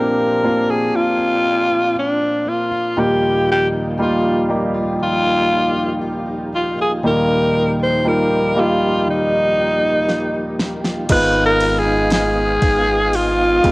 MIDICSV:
0, 0, Header, 1, 7, 480
1, 0, Start_track
1, 0, Key_signature, -3, "major"
1, 0, Tempo, 1016949
1, 1399, Time_signature, 4, 2, 24, 8
1, 6474, End_track
2, 0, Start_track
2, 0, Title_t, "Alto saxophone"
2, 0, Program_c, 0, 65
2, 0, Note_on_c, 0, 70, 80
2, 333, Note_on_c, 0, 68, 75
2, 341, Note_off_c, 0, 70, 0
2, 451, Note_on_c, 0, 65, 91
2, 458, Note_off_c, 0, 68, 0
2, 925, Note_off_c, 0, 65, 0
2, 939, Note_on_c, 0, 62, 76
2, 1171, Note_on_c, 0, 65, 66
2, 1179, Note_off_c, 0, 62, 0
2, 1414, Note_on_c, 0, 67, 78
2, 1422, Note_off_c, 0, 65, 0
2, 1647, Note_off_c, 0, 67, 0
2, 1659, Note_on_c, 0, 67, 78
2, 1734, Note_off_c, 0, 67, 0
2, 1898, Note_on_c, 0, 65, 61
2, 2112, Note_off_c, 0, 65, 0
2, 2373, Note_on_c, 0, 65, 97
2, 2827, Note_off_c, 0, 65, 0
2, 3092, Note_on_c, 0, 65, 64
2, 3198, Note_off_c, 0, 65, 0
2, 3215, Note_on_c, 0, 68, 68
2, 3265, Note_off_c, 0, 68, 0
2, 3334, Note_on_c, 0, 70, 86
2, 3668, Note_off_c, 0, 70, 0
2, 3696, Note_on_c, 0, 72, 75
2, 3813, Note_on_c, 0, 70, 74
2, 3820, Note_off_c, 0, 72, 0
2, 4058, Note_on_c, 0, 65, 76
2, 4065, Note_off_c, 0, 70, 0
2, 4289, Note_off_c, 0, 65, 0
2, 4296, Note_on_c, 0, 63, 74
2, 4989, Note_off_c, 0, 63, 0
2, 5247, Note_on_c, 0, 71, 100
2, 5392, Note_off_c, 0, 71, 0
2, 5408, Note_on_c, 0, 70, 108
2, 5565, Note_on_c, 0, 68, 93
2, 5572, Note_off_c, 0, 70, 0
2, 5722, Note_off_c, 0, 68, 0
2, 5727, Note_on_c, 0, 68, 86
2, 6209, Note_on_c, 0, 65, 91
2, 6217, Note_off_c, 0, 68, 0
2, 6474, Note_off_c, 0, 65, 0
2, 6474, End_track
3, 0, Start_track
3, 0, Title_t, "Tonewheel organ"
3, 0, Program_c, 1, 16
3, 1399, Note_on_c, 1, 58, 48
3, 1401, Note_on_c, 1, 63, 47
3, 1401, Note_on_c, 1, 67, 55
3, 1402, Note_on_c, 1, 53, 50
3, 5220, Note_off_c, 1, 58, 0
3, 5221, Note_off_c, 1, 63, 0
3, 5221, Note_off_c, 1, 67, 0
3, 5222, Note_off_c, 1, 53, 0
3, 5232, Note_on_c, 1, 59, 53
3, 5233, Note_on_c, 1, 65, 58
3, 5233, Note_on_c, 1, 77, 67
3, 5234, Note_on_c, 1, 75, 53
3, 6474, Note_off_c, 1, 59, 0
3, 6474, Note_off_c, 1, 65, 0
3, 6474, Note_off_c, 1, 75, 0
3, 6474, Note_off_c, 1, 77, 0
3, 6474, End_track
4, 0, Start_track
4, 0, Title_t, "Steel-string acoustic guitar"
4, 0, Program_c, 2, 25
4, 0, Note_on_c, 2, 46, 71
4, 0, Note_on_c, 2, 60, 49
4, 0, Note_on_c, 2, 65, 54
4, 82, Note_off_c, 2, 60, 0
4, 206, Note_on_c, 2, 58, 46
4, 319, Note_off_c, 2, 65, 0
4, 321, Note_on_c, 2, 65, 52
4, 437, Note_off_c, 2, 46, 0
4, 443, Note_on_c, 2, 46, 64
4, 561, Note_on_c, 2, 60, 51
4, 680, Note_off_c, 2, 65, 0
4, 682, Note_on_c, 2, 65, 54
4, 798, Note_off_c, 2, 60, 0
4, 803, Note_on_c, 2, 60, 50
4, 922, Note_off_c, 2, 65, 0
4, 924, Note_on_c, 2, 65, 58
4, 1037, Note_off_c, 2, 60, 0
4, 1043, Note_on_c, 2, 60, 46
4, 1162, Note_off_c, 2, 58, 0
4, 1164, Note_on_c, 2, 58, 54
4, 1279, Note_off_c, 2, 65, 0
4, 1281, Note_on_c, 2, 65, 58
4, 1400, Note_on_c, 2, 51, 73
4, 1449, Note_off_c, 2, 46, 0
4, 1449, Note_off_c, 2, 60, 0
4, 1521, Note_on_c, 2, 63, 44
4, 1535, Note_off_c, 2, 65, 0
4, 1637, Note_on_c, 2, 65, 55
4, 1757, Note_off_c, 2, 63, 0
4, 1759, Note_on_c, 2, 63, 46
4, 1875, Note_off_c, 2, 65, 0
4, 1877, Note_on_c, 2, 65, 60
4, 1997, Note_off_c, 2, 63, 0
4, 1999, Note_on_c, 2, 63, 45
4, 2120, Note_off_c, 2, 58, 0
4, 2122, Note_on_c, 2, 58, 54
4, 2236, Note_off_c, 2, 65, 0
4, 2238, Note_on_c, 2, 65, 57
4, 2356, Note_off_c, 2, 51, 0
4, 2358, Note_on_c, 2, 51, 72
4, 2476, Note_off_c, 2, 63, 0
4, 2478, Note_on_c, 2, 63, 47
4, 2594, Note_off_c, 2, 65, 0
4, 2596, Note_on_c, 2, 65, 50
4, 2718, Note_off_c, 2, 63, 0
4, 2720, Note_on_c, 2, 63, 49
4, 2836, Note_off_c, 2, 65, 0
4, 2838, Note_on_c, 2, 65, 54
4, 2953, Note_off_c, 2, 63, 0
4, 2955, Note_on_c, 2, 63, 49
4, 3074, Note_off_c, 2, 58, 0
4, 3079, Note_on_c, 2, 58, 49
4, 3195, Note_off_c, 2, 65, 0
4, 3197, Note_on_c, 2, 65, 55
4, 3317, Note_off_c, 2, 51, 0
4, 3319, Note_on_c, 2, 51, 68
4, 3437, Note_off_c, 2, 63, 0
4, 3439, Note_on_c, 2, 63, 52
4, 3561, Note_off_c, 2, 65, 0
4, 3562, Note_on_c, 2, 65, 52
4, 3677, Note_off_c, 2, 63, 0
4, 3679, Note_on_c, 2, 63, 47
4, 3795, Note_off_c, 2, 65, 0
4, 3797, Note_on_c, 2, 65, 57
4, 3917, Note_off_c, 2, 63, 0
4, 3919, Note_on_c, 2, 63, 46
4, 4035, Note_off_c, 2, 58, 0
4, 4041, Note_on_c, 2, 58, 52
4, 4158, Note_off_c, 2, 65, 0
4, 4160, Note_on_c, 2, 65, 55
4, 4280, Note_off_c, 2, 51, 0
4, 4282, Note_on_c, 2, 51, 64
4, 4399, Note_off_c, 2, 63, 0
4, 4401, Note_on_c, 2, 63, 49
4, 4519, Note_off_c, 2, 65, 0
4, 4521, Note_on_c, 2, 65, 55
4, 4641, Note_off_c, 2, 63, 0
4, 4643, Note_on_c, 2, 63, 42
4, 4762, Note_off_c, 2, 65, 0
4, 4764, Note_on_c, 2, 65, 57
4, 4880, Note_off_c, 2, 63, 0
4, 4882, Note_on_c, 2, 63, 47
4, 4994, Note_off_c, 2, 58, 0
4, 5000, Note_on_c, 2, 58, 48
4, 5115, Note_off_c, 2, 65, 0
4, 5117, Note_on_c, 2, 65, 52
4, 5237, Note_on_c, 2, 56, 75
4, 5287, Note_off_c, 2, 58, 0
4, 5352, Note_off_c, 2, 63, 0
4, 5354, Note_on_c, 2, 63, 59
4, 5368, Note_off_c, 2, 65, 0
4, 5481, Note_on_c, 2, 65, 68
4, 5495, Note_off_c, 2, 51, 0
4, 5595, Note_off_c, 2, 63, 0
4, 5600, Note_on_c, 2, 63, 63
4, 5713, Note_off_c, 2, 65, 0
4, 5715, Note_on_c, 2, 65, 67
4, 5838, Note_on_c, 2, 59, 55
4, 5950, Note_off_c, 2, 63, 0
4, 5955, Note_on_c, 2, 63, 62
4, 6069, Note_off_c, 2, 59, 0
4, 6075, Note_on_c, 2, 59, 54
4, 6187, Note_off_c, 2, 56, 0
4, 6193, Note_on_c, 2, 56, 78
4, 6305, Note_off_c, 2, 63, 0
4, 6310, Note_on_c, 2, 63, 51
4, 6430, Note_off_c, 2, 65, 0
4, 6432, Note_on_c, 2, 65, 66
4, 6474, Note_off_c, 2, 56, 0
4, 6474, Note_off_c, 2, 59, 0
4, 6474, Note_off_c, 2, 63, 0
4, 6474, Note_off_c, 2, 65, 0
4, 6474, End_track
5, 0, Start_track
5, 0, Title_t, "Grand piano"
5, 0, Program_c, 3, 0
5, 0, Control_c, 3, 64, 127
5, 0, Note_on_c, 3, 46, 47
5, 0, Note_on_c, 3, 53, 49
5, 0, Note_on_c, 3, 58, 53
5, 0, Note_on_c, 3, 60, 53
5, 0, Note_on_c, 3, 62, 50
5, 0, Note_on_c, 3, 65, 55
5, 0, Note_on_c, 3, 67, 65
5, 187, Note_off_c, 3, 58, 0
5, 188, Note_off_c, 3, 67, 0
5, 189, Note_off_c, 3, 60, 0
5, 189, Note_off_c, 3, 62, 0
5, 206, Note_on_c, 3, 58, 57
5, 207, Note_on_c, 3, 62, 52
5, 208, Note_on_c, 3, 60, 51
5, 210, Note_off_c, 3, 65, 0
5, 210, Note_on_c, 3, 65, 66
5, 1114, Note_off_c, 3, 58, 0
5, 1115, Note_off_c, 3, 62, 0
5, 1116, Note_off_c, 3, 60, 0
5, 1117, Note_off_c, 3, 65, 0
5, 1383, Note_off_c, 3, 46, 0
5, 1383, Note_off_c, 3, 53, 0
5, 1400, Note_on_c, 3, 39, 43
5, 1401, Note_on_c, 3, 46, 48
5, 1401, Note_on_c, 3, 55, 50
5, 1402, Note_on_c, 3, 58, 53
5, 1403, Note_on_c, 3, 65, 64
5, 1404, Note_on_c, 3, 63, 50
5, 1406, Control_c, 3, 64, 0
5, 1498, Control_c, 3, 64, 127
5, 1856, Note_off_c, 3, 55, 0
5, 1857, Note_off_c, 3, 58, 0
5, 1857, Note_off_c, 3, 65, 0
5, 1858, Note_off_c, 3, 63, 0
5, 1881, Note_on_c, 3, 55, 60
5, 1881, Note_on_c, 3, 58, 50
5, 1881, Note_on_c, 3, 63, 53
5, 1885, Note_on_c, 3, 65, 70
5, 2108, Note_off_c, 3, 55, 0
5, 2108, Note_off_c, 3, 58, 0
5, 2108, Note_off_c, 3, 63, 0
5, 2110, Note_off_c, 3, 65, 0
5, 2118, Note_on_c, 3, 55, 61
5, 2122, Note_on_c, 3, 58, 54
5, 2123, Note_on_c, 3, 67, 60
5, 2124, Note_on_c, 3, 63, 51
5, 3031, Note_off_c, 3, 55, 0
5, 3033, Note_off_c, 3, 58, 0
5, 3033, Note_off_c, 3, 67, 0
5, 3034, Note_off_c, 3, 63, 0
5, 3301, Note_off_c, 3, 39, 0
5, 3301, Note_off_c, 3, 46, 0
5, 3320, Note_on_c, 3, 55, 53
5, 3321, Note_on_c, 3, 39, 48
5, 3322, Note_on_c, 3, 46, 49
5, 3322, Note_on_c, 3, 63, 49
5, 3323, Note_on_c, 3, 58, 48
5, 3324, Note_on_c, 3, 65, 60
5, 3776, Note_off_c, 3, 55, 0
5, 3777, Note_off_c, 3, 58, 0
5, 3777, Note_off_c, 3, 63, 0
5, 3778, Note_off_c, 3, 65, 0
5, 3797, Note_on_c, 3, 55, 57
5, 3799, Note_on_c, 3, 63, 49
5, 3801, Note_on_c, 3, 58, 51
5, 3804, Note_on_c, 3, 65, 58
5, 4026, Note_off_c, 3, 55, 0
5, 4027, Note_off_c, 3, 63, 0
5, 4028, Note_off_c, 3, 58, 0
5, 4029, Note_off_c, 3, 65, 0
5, 4037, Note_on_c, 3, 55, 57
5, 4040, Note_on_c, 3, 58, 50
5, 4042, Note_on_c, 3, 63, 55
5, 4042, Note_on_c, 3, 67, 60
5, 4950, Note_off_c, 3, 55, 0
5, 4951, Note_off_c, 3, 58, 0
5, 4952, Note_off_c, 3, 63, 0
5, 4952, Note_off_c, 3, 67, 0
5, 5221, Note_off_c, 3, 39, 0
5, 5222, Note_off_c, 3, 46, 0
5, 5238, Note_on_c, 3, 56, 60
5, 5239, Note_on_c, 3, 44, 53
5, 5239, Note_on_c, 3, 59, 61
5, 5240, Note_on_c, 3, 51, 57
5, 5240, Note_on_c, 3, 63, 61
5, 5240, Note_on_c, 3, 65, 75
5, 5246, Control_c, 3, 64, 0
5, 5340, Control_c, 3, 64, 127
5, 5940, Note_off_c, 3, 44, 0
5, 5941, Note_off_c, 3, 51, 0
5, 6151, Note_off_c, 3, 56, 0
5, 6151, Note_off_c, 3, 59, 0
5, 6152, Note_off_c, 3, 63, 0
5, 6152, Note_off_c, 3, 65, 0
5, 6437, Note_on_c, 3, 56, 68
5, 6437, Note_on_c, 3, 59, 61
5, 6440, Note_on_c, 3, 63, 62
5, 6440, Note_on_c, 3, 67, 67
5, 6474, Note_off_c, 3, 56, 0
5, 6474, Note_off_c, 3, 59, 0
5, 6474, Note_off_c, 3, 63, 0
5, 6474, Note_off_c, 3, 67, 0
5, 6474, End_track
6, 0, Start_track
6, 0, Title_t, "Sub bass"
6, 0, Program_c, 4, 38
6, 5238, Note_on_c, 4, 32, 98
6, 5940, Note_off_c, 4, 32, 0
6, 5958, Note_on_c, 4, 32, 88
6, 6420, Note_off_c, 4, 32, 0
6, 6439, Note_on_c, 4, 32, 104
6, 6474, Note_off_c, 4, 32, 0
6, 6474, End_track
7, 0, Start_track
7, 0, Title_t, "Drums"
7, 4761, Note_on_c, 9, 38, 44
7, 4808, Note_off_c, 9, 38, 0
7, 5001, Note_on_c, 9, 38, 69
7, 5048, Note_off_c, 9, 38, 0
7, 5119, Note_on_c, 9, 38, 59
7, 5166, Note_off_c, 9, 38, 0
7, 5235, Note_on_c, 9, 49, 100
7, 5235, Note_on_c, 9, 51, 75
7, 5237, Note_on_c, 9, 36, 96
7, 5282, Note_off_c, 9, 49, 0
7, 5282, Note_off_c, 9, 51, 0
7, 5285, Note_off_c, 9, 36, 0
7, 5477, Note_on_c, 9, 51, 63
7, 5525, Note_off_c, 9, 51, 0
7, 5713, Note_on_c, 9, 51, 74
7, 5719, Note_on_c, 9, 38, 106
7, 5760, Note_off_c, 9, 51, 0
7, 5766, Note_off_c, 9, 38, 0
7, 5956, Note_on_c, 9, 51, 59
7, 5957, Note_on_c, 9, 36, 93
7, 6003, Note_off_c, 9, 51, 0
7, 6004, Note_off_c, 9, 36, 0
7, 6198, Note_on_c, 9, 51, 71
7, 6246, Note_off_c, 9, 51, 0
7, 6438, Note_on_c, 9, 36, 77
7, 6438, Note_on_c, 9, 51, 63
7, 6474, Note_off_c, 9, 36, 0
7, 6474, Note_off_c, 9, 51, 0
7, 6474, End_track
0, 0, End_of_file